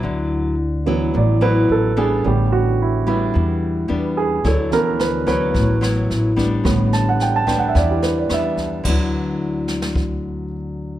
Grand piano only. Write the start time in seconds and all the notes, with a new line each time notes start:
0.86 E3 F#3 B3
1.17 D5
1.42 B4
1.72 A4
1.98 G#4
2.24 D3 G3 B3 G4
2.52 F#4
2.82 E4
3.08 E4
4.17 G#4
4.47 A4
4.71 E3 F#3 B3 A#4
5.01 B4
5.28 B4
6.64 D3 G3 B3
6.93 A5
7.09 F#5
7.22 G5
7.36 A5
7.47 G5
7.59 F#5
7.68 E5
7.76 D5
7.91 G4
8.03 B4
8.18 D5
8.33 E5